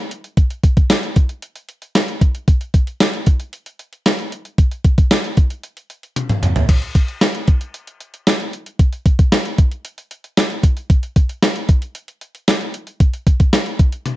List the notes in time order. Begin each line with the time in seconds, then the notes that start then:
0.11 closed hi-hat
0.24 closed hi-hat
0.37 kick, closed hi-hat
0.50 closed hi-hat
0.64 kick, closed hi-hat
0.77 kick, closed hi-hat
0.90 snare, closed hi-hat
1.03 closed hi-hat
1.16 kick, closed hi-hat
1.29 closed hi-hat
1.42 closed hi-hat
1.56 closed hi-hat
1.69 closed hi-hat
1.82 closed hi-hat
1.95 snare, closed hi-hat
2.08 closed hi-hat
2.21 kick, closed hi-hat
2.35 closed hi-hat
2.48 kick, closed hi-hat
2.61 closed hi-hat
2.74 kick, closed hi-hat
2.87 closed hi-hat
3.00 snare, closed hi-hat
3.14 closed hi-hat
3.26 kick, closed hi-hat
3.40 closed hi-hat
3.53 closed hi-hat
3.66 closed hi-hat
3.79 closed hi-hat
3.93 closed hi-hat
4.06 snare, closed hi-hat
4.19 closed hi-hat
4.32 closed hi-hat
4.45 closed hi-hat
4.58 kick, closed hi-hat
4.71 closed hi-hat
4.84 kick, closed hi-hat
4.98 kick, closed hi-hat
5.11 snare, closed hi-hat
5.24 closed hi-hat
5.37 kick, closed hi-hat
5.50 closed hi-hat
5.63 closed hi-hat
5.77 closed hi-hat
5.90 closed hi-hat
6.03 closed hi-hat
6.16 closed hi-hat, high tom
6.29 closed hi-hat, mid tom
6.43 closed hi-hat, mid tom
6.56 closed hi-hat, floor tom
6.69 kick, closed hi-hat, crash
6.82 closed hi-hat
6.95 kick, closed hi-hat
7.08 closed hi-hat
7.21 snare, closed hi-hat
7.35 closed hi-hat
7.48 kick, closed hi-hat
7.61 closed hi-hat
7.74 closed hi-hat
7.87 closed hi-hat
8.00 closed hi-hat
8.14 closed hi-hat
8.27 snare, closed hi-hat
8.40 closed hi-hat
8.53 closed hi-hat
8.66 closed hi-hat
8.79 kick, closed hi-hat
8.93 closed hi-hat
9.06 kick, closed hi-hat
9.19 kick, closed hi-hat
9.32 snare, closed hi-hat
9.45 closed hi-hat
9.58 kick, closed hi-hat
9.72 closed hi-hat
9.85 closed hi-hat
9.98 closed hi-hat
10.11 closed hi-hat
10.24 closed hi-hat
10.37 snare, closed hi-hat
10.50 closed hi-hat
10.63 kick, closed hi-hat
10.77 closed hi-hat
10.90 kick, closed hi-hat
11.03 closed hi-hat
11.16 kick, closed hi-hat
11.29 closed hi-hat
11.42 snare, closed hi-hat
11.56 closed hi-hat
11.69 kick, closed hi-hat
11.82 closed hi-hat
11.95 closed hi-hat
12.08 closed hi-hat
12.21 closed hi-hat
12.35 closed hi-hat
12.48 snare, closed hi-hat
12.61 closed hi-hat
12.74 closed hi-hat
12.87 closed hi-hat
13.00 kick, closed hi-hat
13.13 closed hi-hat
13.27 kick, closed hi-hat
13.40 kick, closed hi-hat
13.53 snare, closed hi-hat
13.66 closed hi-hat
13.79 kick, closed hi-hat
13.92 closed hi-hat
14.06 closed hi-hat, high tom